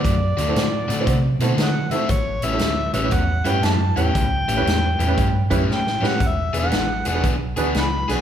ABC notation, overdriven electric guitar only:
X:1
M:4/4
L:1/8
Q:"Swing" 1/4=117
K:Amix
V:1 name="Overdriven electric guitar"
[D,A,=CF] [D,A,CF] z [D,A,CF] z [D,A,CF] z [D,A,CF] | z [A,,G,CE] z [A,,G,CE] z [A,,G,CE] z [A,,G,CE] | z [A,,G,CE] z [A,,G,CE] z [A,,G,CE] z [A,,G,CE] | z [E,B,D^G] z [E,B,DG] z [E,B,DG] z [E,B,DG] |]